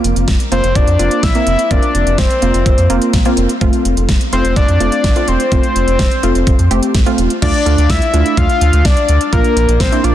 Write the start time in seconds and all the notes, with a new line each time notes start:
Already playing: A#3 C4 F4
0.04 F1, closed hi-hat
0.16 F1, closed hi-hat
0.28 F1, kick, snare, closed hi-hat
0.40 closed hi-hat
0.52 F1 A#3 C4 F4 C5, closed hi-hat
0.64 F1, closed hi-hat
0.75 F1 D5, kick, closed hi-hat
0.87 F2, closed hi-hat
0.99 F1 A#3 C4 F4, closed hi-hat
1.11 closed hi-hat
1.23 A#1 E5, kick, snare, closed hi-hat
1.35 A#3 C4 E4, closed hi-hat
1.47 F1, closed hi-hat
1.59 closed hi-hat
1.71 F1 A#3 C4 F4 D5, kick, closed hi-hat
1.83 closed hi-hat
1.95 F1, closed hi-hat
2.06 F1, closed hi-hat
2.18 F1 C5, kick, snare, closed hi-hat
2.30 closed hi-hat
2.42 F1 A#3 C4 F4, closed hi-hat
2.54 F1, closed hi-hat
2.66 F1, kick, closed hi-hat
2.78 F2, closed hi-hat
2.90 F1 A#3 C4 F4, closed hi-hat
3.02 closed hi-hat
3.13 A#1, kick, snare, closed hi-hat
3.25 A#3 C4 F4, closed hi-hat
3.37 F1, closed hi-hat
3.49 closed hi-hat
3.61 F1 A3 C4 F4, kick, closed hi-hat
3.73 closed hi-hat
3.85 F1, closed hi-hat
3.97 F1, closed hi-hat
4.09 F1, kick, snare, closed hi-hat
4.21 closed hi-hat
4.33 F1 A3 C4 F4 C5, closed hi-hat
4.45 F1, closed hi-hat
4.56 F1 D5, kick, closed hi-hat
4.68 F2, closed hi-hat
4.80 F1 A3 C4 F4, closed hi-hat
4.92 closed hi-hat
5.04 A1, kick, snare, closed hi-hat
5.16 A3 C4 F4, closed hi-hat
5.28 E1 C5, closed hi-hat
5.40 closed hi-hat
5.52 F1 A3 C4 F4, kick, closed hi-hat
5.63 closed hi-hat
5.76 F1, closed hi-hat
5.87 F1, closed hi-hat
5.99 F1, kick, snare, closed hi-hat
6.11 closed hi-hat
6.23 F1 A3 C4 F4, closed hi-hat
6.35 F1, closed hi-hat
6.47 F1, kick, closed hi-hat
6.59 F2, closed hi-hat
6.71 F1 A3 C4 G4, closed hi-hat
6.83 closed hi-hat
6.94 A1, kick, snare, closed hi-hat
7.06 A3 C4 F4, closed hi-hat
7.18 E1, closed hi-hat
7.30 closed hi-hat
7.42 D2 A3 D4 F4 D5, kick, closed hi-hat, crash
7.54 closed hi-hat
7.66 D2 A3 D4 F4, closed hi-hat
7.78 D2, closed hi-hat
7.90 D2 E5, kick, snare, closed hi-hat
8.02 closed hi-hat
8.13 D2 A3 D4 F4, closed hi-hat
8.26 closed hi-hat
8.37 D2 F5, kick, closed hi-hat
8.49 closed hi-hat
8.61 D2, closed hi-hat
8.73 D2, closed hi-hat
8.85 C2 D5, kick, snare, closed hi-hat
8.97 closed hi-hat
9.09 D2, closed hi-hat
9.21 closed hi-hat
9.33 A#1 A#3 D4 F4 A#4, kick, closed hi-hat
9.44 closed hi-hat
9.56 A#1, closed hi-hat
9.68 A#1, closed hi-hat
9.80 A#1 C5, kick, snare, closed hi-hat
9.92 A#3 D4 E4, closed hi-hat
10.04 A#1 A#3 D4 F4 D5, closed hi-hat